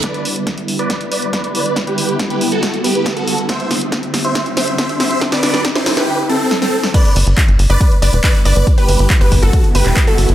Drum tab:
CC |----------------|----------------|----------------|----------------|
HH |xxoxxxoxxxoxxxox|xxoxxxoxxxoxxxox|xxoxxxoxxxoxxxox|xxoxxxox--------|
CP |----------------|----------------|----------------|----------------|
SD |o---o---o---o---|o---o---o---o---|o-o-o-o-o-o-o-o-|oooooooo----oo-o|
BD |o---o---o---o---|o---o---o---o---|o---o---o---o---|o---o-----------|

CC |x---------------|----------------|
HH |xxoxxxoxxxoxxxox|xxoxxxoxxxoxxxox|
CP |----x-------x---|----x------xx---|
SD |----------------|----------------|
BD |o---o---o---o---|o---o-o-o---o---|